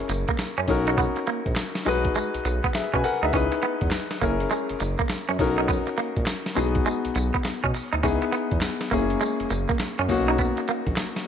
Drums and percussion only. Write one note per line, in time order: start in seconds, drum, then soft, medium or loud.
0.09 closed hi-hat medium
0.09 tambourine medium
0.28 kick loud
0.28 closed hi-hat medium
0.38 snare loud
0.38 clap medium
0.38 closed hi-hat medium
0.38 tambourine medium
0.58 closed hi-hat medium
0.68 kick medium
0.68 open hi-hat medium
0.68 tambourine medium
0.87 closed hi-hat medium
0.98 kick loud
0.98 closed hi-hat medium
0.98 tambourine medium
1.16 closed hi-hat soft
1.27 closed hi-hat medium
1.46 kick medium
1.46 closed hi-hat medium
1.56 snare loud
1.56 clap loud
1.56 closed hi-hat medium
1.56 tambourine loud
1.75 snare medium
1.75 closed hi-hat medium
1.86 open hi-hat medium
1.86 tambourine medium
2.05 kick medium
2.05 closed hi-hat medium
2.15 closed hi-hat medium
2.15 tambourine medium
2.34 closed hi-hat medium
2.45 closed hi-hat medium
2.45 tambourine medium
2.64 kick loud
2.64 closed hi-hat medium
2.74 snare medium
2.74 clap medium
2.74 closed hi-hat medium
2.74 tambourine medium
2.94 kick medium
2.94 closed hi-hat medium
3.04 open hi-hat medium
3.04 tambourine medium
3.23 closed hi-hat soft
3.33 kick loud
3.33 closed hi-hat medium
3.33 tambourine medium
3.52 closed hi-hat medium
3.63 closed hi-hat medium
3.81 kick medium
3.81 closed hi-hat medium
3.91 snare loud
3.91 clap loud
3.91 closed hi-hat medium
3.91 tambourine loud
4.11 snare medium
4.11 closed hi-hat medium
4.21 kick medium
4.21 closed hi-hat medium
4.21 tambourine medium
4.40 closed hi-hat medium
4.51 closed hi-hat medium
4.51 tambourine medium
4.69 closed hi-hat medium
4.80 closed hi-hat medium
4.80 tambourine medium
4.99 kick loud
4.99 closed hi-hat medium
5.09 snare loud
5.09 clap medium
5.09 closed hi-hat medium
5.09 tambourine medium
5.29 closed hi-hat soft
5.39 kick loud
5.39 open hi-hat medium
5.39 tambourine medium
5.58 closed hi-hat medium
5.69 kick loud
5.69 closed hi-hat medium
5.69 tambourine medium
5.87 closed hi-hat soft
5.98 closed hi-hat medium
6.17 kick medium
6.17 closed hi-hat medium
6.26 snare loud
6.26 clap loud
6.26 closed hi-hat medium
6.26 tambourine loud
6.46 snare medium
6.46 closed hi-hat medium
6.56 closed hi-hat medium
6.56 tambourine medium
6.75 kick loud
6.75 closed hi-hat medium
6.86 closed hi-hat medium
6.86 tambourine medium
7.05 closed hi-hat medium
7.15 closed hi-hat medium
7.15 tambourine medium
7.34 kick loud
7.34 closed hi-hat medium
7.44 snare medium
7.44 clap medium
7.44 closed hi-hat medium
7.44 tambourine medium
7.64 kick medium
7.64 closed hi-hat medium
7.74 open hi-hat medium
7.74 tambourine medium
7.93 closed hi-hat medium
8.03 kick loud
8.03 closed hi-hat medium
8.03 tambourine medium
8.22 closed hi-hat medium
8.32 closed hi-hat medium
8.51 kick medium
8.51 closed hi-hat medium
8.61 snare loud
8.61 clap loud
8.61 closed hi-hat medium
8.61 tambourine loud
8.81 snare medium
8.81 closed hi-hat medium
8.91 kick medium
8.91 closed hi-hat medium
8.91 tambourine medium
9.10 closed hi-hat medium
9.21 closed hi-hat medium
9.21 tambourine medium
9.40 closed hi-hat medium
9.50 closed hi-hat medium
9.50 tambourine medium
9.69 kick loud
9.69 closed hi-hat medium
9.79 snare loud
9.79 clap medium
9.79 closed hi-hat medium
9.79 tambourine medium
9.99 closed hi-hat soft
10.09 kick medium
10.09 open hi-hat medium
10.09 tambourine medium
10.28 closed hi-hat medium
10.38 kick loud
10.38 closed hi-hat medium
10.38 tambourine medium
10.57 closed hi-hat soft
10.68 closed hi-hat medium
10.87 kick medium
10.87 closed hi-hat medium
10.96 snare loud
10.96 clap medium
10.96 closed hi-hat medium
10.96 tambourine loud
11.16 snare medium
11.16 closed hi-hat medium